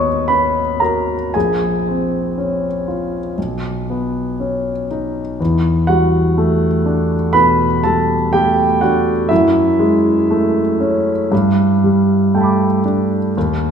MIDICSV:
0, 0, Header, 1, 2, 480
1, 0, Start_track
1, 0, Tempo, 1056338
1, 615, Time_signature, 4, 2, 24, 8
1, 615, Tempo, 1013514
1, 2055, Tempo, 983607
1, 4935, Tempo, 1023891
1, 6536, End_track
2, 0, Start_track
2, 0, Title_t, "Grand piano"
2, 0, Program_c, 0, 0
2, 0, Control_c, 0, 64, 127
2, 0, Note_on_c, 0, 39, 30
2, 0, Note_on_c, 0, 59, 27
2, 0, Note_on_c, 0, 61, 31
2, 0, Note_on_c, 0, 66, 33
2, 0, Note_on_c, 0, 73, 41
2, 0, Note_on_c, 0, 75, 43
2, 0, Note_on_c, 0, 85, 50
2, 0, Note_on_c, 0, 87, 52
2, 115, Note_off_c, 0, 73, 0
2, 127, Note_on_c, 0, 83, 58
2, 129, Note_off_c, 0, 85, 0
2, 133, Note_on_c, 0, 71, 40
2, 135, Note_off_c, 0, 61, 0
2, 135, Note_on_c, 0, 61, 30
2, 276, Note_off_c, 0, 59, 0
2, 357, Note_off_c, 0, 71, 0
2, 364, Note_on_c, 0, 82, 54
2, 370, Note_off_c, 0, 83, 0
2, 370, Note_on_c, 0, 70, 36
2, 372, Note_off_c, 0, 66, 0
2, 372, Note_on_c, 0, 66, 27
2, 521, Note_off_c, 0, 61, 0
2, 596, Note_off_c, 0, 70, 0
2, 608, Note_on_c, 0, 80, 51
2, 610, Note_off_c, 0, 82, 0
2, 615, Note_off_c, 0, 66, 0
2, 615, Note_on_c, 0, 68, 40
2, 617, Note_on_c, 0, 34, 34
2, 623, Control_c, 0, 64, 0
2, 626, Note_off_c, 0, 39, 0
2, 627, Note_off_c, 0, 87, 0
2, 628, Note_off_c, 0, 75, 0
2, 689, Control_c, 0, 64, 127
2, 865, Note_on_c, 0, 60, 28
2, 1100, Note_on_c, 0, 61, 34
2, 1240, Note_off_c, 0, 60, 0
2, 1337, Note_on_c, 0, 65, 31
2, 1478, Note_off_c, 0, 61, 0
2, 1552, Note_off_c, 0, 34, 0
2, 1573, Note_off_c, 0, 65, 0
2, 1575, Note_on_c, 0, 35, 35
2, 1579, Control_c, 0, 64, 0
2, 1660, Control_c, 0, 64, 127
2, 1821, Note_on_c, 0, 59, 30
2, 2058, Note_on_c, 0, 61, 31
2, 2207, Note_off_c, 0, 59, 0
2, 2281, Note_off_c, 0, 68, 0
2, 2297, Note_off_c, 0, 80, 0
2, 2306, Note_on_c, 0, 63, 31
2, 2449, Note_off_c, 0, 61, 0
2, 2527, Note_off_c, 0, 35, 0
2, 2546, Note_off_c, 0, 63, 0
2, 2546, Note_on_c, 0, 40, 40
2, 2552, Control_c, 0, 64, 0
2, 2625, Control_c, 0, 64, 127
2, 2776, Note_on_c, 0, 78, 55
2, 2784, Note_on_c, 0, 66, 45
2, 2787, Note_on_c, 0, 55, 30
2, 3023, Note_on_c, 0, 57, 38
2, 3166, Note_off_c, 0, 55, 0
2, 3257, Note_on_c, 0, 62, 37
2, 3402, Note_off_c, 0, 57, 0
2, 3478, Note_off_c, 0, 66, 0
2, 3479, Note_off_c, 0, 40, 0
2, 3487, Note_on_c, 0, 83, 67
2, 3492, Note_on_c, 0, 71, 51
2, 3493, Note_off_c, 0, 78, 0
2, 3495, Note_on_c, 0, 47, 33
2, 3641, Note_off_c, 0, 62, 0
2, 3719, Note_off_c, 0, 71, 0
2, 3733, Note_off_c, 0, 83, 0
2, 3734, Note_on_c, 0, 81, 63
2, 3738, Note_on_c, 0, 69, 45
2, 3741, Note_on_c, 0, 55, 32
2, 3883, Note_off_c, 0, 47, 0
2, 3963, Note_off_c, 0, 69, 0
2, 3974, Note_on_c, 0, 79, 68
2, 3978, Note_off_c, 0, 81, 0
2, 3979, Note_on_c, 0, 67, 47
2, 3983, Note_on_c, 0, 57, 35
2, 4124, Note_off_c, 0, 55, 0
2, 4200, Note_off_c, 0, 67, 0
2, 4211, Note_on_c, 0, 78, 57
2, 4215, Note_off_c, 0, 79, 0
2, 4216, Note_on_c, 0, 66, 47
2, 4220, Note_on_c, 0, 62, 35
2, 4360, Note_off_c, 0, 57, 0
2, 4435, Note_off_c, 0, 66, 0
2, 4443, Note_on_c, 0, 76, 62
2, 4449, Note_off_c, 0, 78, 0
2, 4449, Note_on_c, 0, 64, 46
2, 4452, Note_on_c, 0, 42, 45
2, 4453, Note_off_c, 0, 62, 0
2, 4459, Control_c, 0, 64, 0
2, 4525, Control_c, 0, 64, 127
2, 4689, Note_on_c, 0, 56, 38
2, 4940, Note_on_c, 0, 57, 41
2, 5076, Note_off_c, 0, 56, 0
2, 5173, Note_on_c, 0, 61, 40
2, 5321, Note_off_c, 0, 57, 0
2, 5395, Note_off_c, 0, 42, 0
2, 5414, Note_off_c, 0, 61, 0
2, 5414, Note_on_c, 0, 43, 47
2, 5421, Control_c, 0, 64, 0
2, 5494, Control_c, 0, 64, 127
2, 5659, Note_on_c, 0, 55, 32
2, 5896, Note_on_c, 0, 79, 32
2, 5897, Note_on_c, 0, 57, 38
2, 5909, Note_on_c, 0, 81, 28
2, 5925, Note_on_c, 0, 83, 30
2, 5937, Note_on_c, 0, 86, 32
2, 6034, Note_off_c, 0, 55, 0
2, 6108, Note_off_c, 0, 64, 0
2, 6123, Note_off_c, 0, 76, 0
2, 6133, Note_on_c, 0, 62, 38
2, 6279, Note_off_c, 0, 57, 0
2, 6353, Note_off_c, 0, 43, 0
2, 6357, Note_off_c, 0, 79, 0
2, 6363, Note_off_c, 0, 81, 0
2, 6372, Note_off_c, 0, 83, 0
2, 6374, Note_off_c, 0, 62, 0
2, 6377, Note_off_c, 0, 86, 0
2, 6378, Control_c, 0, 64, 0
2, 6378, Note_on_c, 0, 39, 44
2, 6445, Control_c, 0, 64, 127
2, 6536, Note_off_c, 0, 39, 0
2, 6536, End_track
0, 0, End_of_file